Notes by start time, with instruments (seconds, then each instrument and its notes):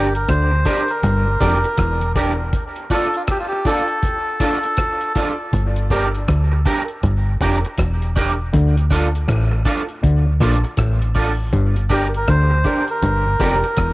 Already playing: fingered electric bass G1, melodica G4
0.15 melodica A#4, closed hi-hat
0.28 fingered electric bass D2, clav D3, melodica C5, kick, cross-stick, closed hi-hat
0.51 muted clean electric guitar stroke
0.65 clean electric guitar D4 G4 A#4, upright piano D4 G4 A#4 D5, kick, closed hi-hat
0.88 melodica A#4, closed hi-hat
1.03 fingered electric bass G1, clav G2, kick, closed hi-hat
1.41 fingered electric bass F1, clav F2, clean electric guitar D4 G4 A#4, upright piano D4 G4 A#4 D5, kick, closed hi-hat
1.64 muted clean electric guitar stroke, closed hi-hat
1.77 fingered electric bass E1, clav E2, kick, cross-stick, closed hi-hat
2.01 closed hi-hat
2.15 upright piano D4 G4 A#4 D5, clean electric guitar D4 G4 A#4, kick, closed hi-hat
2.53 kick, closed hi-hat
2.76 closed hi-hat
2.90 upright piano D4 F4 A4 D5, clean electric guitar D4 F4 A4, melodica A4, kick, closed hi-hat
3.14 melodica F4, closed hi-hat
3.27 melodica G4, kick, cross-stick, closed hi-hat
3.39 melodica F4
3.48 melodica G4
3.52 muted clean electric guitar stroke
3.65 upright piano D4 F4 A4 D5, clean electric guitar D4 F4 A4, melodica A4, kick, closed hi-hat
3.88 closed hi-hat
4.03 kick, closed hi-hat
4.40 clean electric guitar D4 F4 A4, upright piano D4 F4 A4 D5, kick, cross-stick, closed hi-hat
4.63 muted clean electric guitar stroke, closed hi-hat
4.77 kick, cross-stick, closed hi-hat
5.01 closed hi-hat
5.15 upright piano D4 F4 A4 D5, clean electric guitar D4 F4 A4, kick, closed hi-hat
5.53 fingered electric bass G1, kick, closed hi-hat
5.76 closed hi-hat
5.90 upright piano D4 G4 A#4 D5, clean electric guitar D4 G4 A#4, kick, closed hi-hat
6.15 closed hi-hat
6.28 fingered electric bass D2, kick, cross-stick, closed hi-hat
6.52 muted clean electric guitar stroke
6.66 clean electric guitar D4 G4 A#4, kick, closed hi-hat
6.88 closed hi-hat
7.03 fingered electric bass G1, kick, closed hi-hat
7.41 fingered electric bass F1, clean electric guitar D4 G4 A#4, kick, closed hi-hat
7.64 muted clean electric guitar stroke, closed hi-hat
7.77 fingered electric bass E1, kick, cross-stick, closed hi-hat
8.02 closed hi-hat
8.16 clean electric guitar D4 G4 A#4, kick, closed hi-hat
8.53 fingered electric bass D2, clav D3, kick, closed hi-hat
8.77 closed hi-hat
8.91 clean electric guitar D4 F4 A4, kick, closed hi-hat
9.15 closed hi-hat
9.28 fingered electric bass A1, clav A2, kick, cross-stick, closed hi-hat
9.52 muted clean electric guitar stroke
9.65 clean electric guitar D4 F4 A4, kick, closed hi-hat
9.89 closed hi-hat
10.03 fingered electric bass D2, clav D3, kick, closed hi-hat
10.40 fingered electric bass A#1, clav A#2, clean electric guitar D4 F4 A4, kick, cross-stick, closed hi-hat
10.64 muted clean electric guitar stroke, closed hi-hat
10.77 fingered electric bass A1, clav A2, kick, cross-stick, closed hi-hat
11.02 closed hi-hat
11.15 clean electric guitar D4 F4 A4, kick, open hi-hat
11.53 fingered electric bass G1, clav G2, kick, closed hi-hat
11.76 closed hi-hat
11.90 clean electric guitar D4 G4 A#4, upright piano D4 G4 A#4 D5, melodica G4, kick, closed hi-hat
12.14 melodica A#4, closed hi-hat
12.28 fingered electric bass D2, clav D3, melodica C5, kick, cross-stick, closed hi-hat
12.50 muted clean electric guitar stroke
12.64 clean electric guitar D4 G4 A#4, upright piano D4 G4 A#4 D5, kick, closed hi-hat
12.88 melodica A#4, closed hi-hat
13.02 fingered electric bass G1, clav G2, kick, closed hi-hat
13.40 fingered electric bass F1, clav F2, clean electric guitar D4 G4 A#4, upright piano D4 G4 A#4 D5, kick, closed hi-hat
13.64 muted clean electric guitar stroke, closed hi-hat
13.77 fingered electric bass E1, clav E2, kick, cross-stick, closed hi-hat